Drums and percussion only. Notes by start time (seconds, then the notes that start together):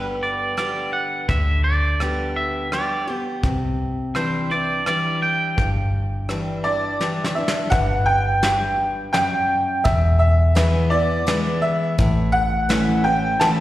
0.58 cross-stick, closed hi-hat
1.29 kick, closed hi-hat
2.00 cross-stick, closed hi-hat
2.72 cross-stick, closed hi-hat
3.43 kick, closed hi-hat
4.15 cross-stick, closed hi-hat
4.86 cross-stick, closed hi-hat
5.58 kick, closed hi-hat
6.29 cross-stick, closed hi-hat
7.00 snare
7.24 snare
7.48 snare
7.72 kick, closed hi-hat
8.43 snare, closed hi-hat
9.14 snare, closed hi-hat
9.85 kick, closed hi-hat
10.56 snare, closed hi-hat
11.28 snare, closed hi-hat
11.99 kick, closed hi-hat
12.70 snare, closed hi-hat
13.41 snare, closed hi-hat